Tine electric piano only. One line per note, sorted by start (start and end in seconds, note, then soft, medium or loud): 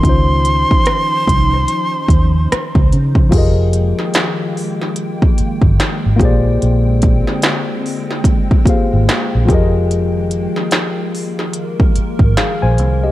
0.00 3.27 D#3 medium
0.00 3.28 C#4 medium
0.05 3.29 D#4 medium
0.05 3.30 F4 medium
0.09 3.31 C5 medium
3.29 6.14 F3 medium
3.29 6.15 F4 medium
3.29 6.16 G4 medium
3.34 6.17 G#4 medium
3.34 6.18 A#4 medium
3.34 6.19 D#5 medium
6.16 8.61 A#3 medium
6.16 8.61 F4 medium
6.16 8.62 G4 medium
6.21 8.63 G#4 medium
6.21 8.64 C5 medium
6.21 8.65 D5 medium
8.65 9.48 A#3 medium
8.65 9.46 F4 medium
8.65 9.48 G4 medium
8.65 9.49 G#4 medium
8.65 9.50 C5 medium
8.70 9.50 F5 medium
9.46 12.72 F3 medium
9.46 12.73 F4 medium
9.46 12.32 G4 medium
9.51 12.33 G#4 medium
9.51 12.34 A#4 medium
9.51 12.35 D#5 medium
12.38 12.61 G#4 medium
12.38 12.61 F5 medium
12.62 13.01 C5 medium
12.62 13.01 G#5 medium
13.04 13.12 G4 medium
13.04 13.12 D#5 medium